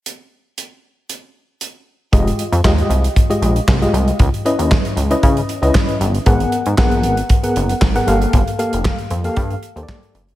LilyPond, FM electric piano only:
\new Staff \with { instrumentName = "FM electric piano" } { \time 4/4 \key g \phrygian \tempo 4 = 116 r1 | <aes f' g' ees''>8 r8 <aes f' g' ees''>8. r8 <aes f' g' ees''>8 r8 <aes f' g' ees''>8. | r8 <des' fes' ces'' ees''>8. r8 <des' fes' ces'' ees''>8 r8 <des' fes' ces'' ees''>8. r8 | <ces' aes' bes' ges''>8 r8 <ces' aes' bes' ges''>8. r8 <ces' aes' bes' ges''>8 r8 <ces' aes' bes' ges''>16 <bes g' a' f''>8~ |
<bes g' a' f''>16 r16 <bes g' a' f''>8. r8 <bes g' a' f''>8 r8 <bes g' a' c'' d''>8. r8 | }